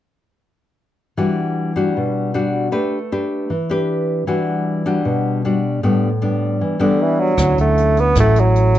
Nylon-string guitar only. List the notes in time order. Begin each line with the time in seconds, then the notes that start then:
1.17 E3 G3 D4 F#4
1.76 G3 D4 F#4
1.97 B2
2.34 G3 D4 F#4
2.72 A3 D4 G4 B4
3.12 D4 G4 B4
3.50 E3
3.70 D4 G4 B4
4.27 E3 G3 D4 F#4
4.86 G3 D4 F#4
5.05 B2
5.45 G3 D4 F#4
5.83 A2 G3 B3 D4
6.22 G3 B3 D4
6.61 E3
6.79 G3 B3 D4
7.37 D3 F#3 C#4 E4
8.16 A2 F#3 C#4 E4